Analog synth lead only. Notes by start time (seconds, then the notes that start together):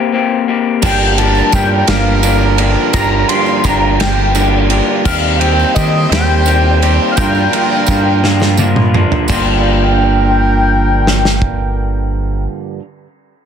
Already playing: C5
0.86 G5
1.18 A5
1.54 G5
1.89 F5
2.94 A#5
3.28 C6
3.65 A#5
4.00 G5
5.05 F5
5.39 G5
5.74 D#5
6.10 G5
7.11 F5
7.16 G5
9.31 G5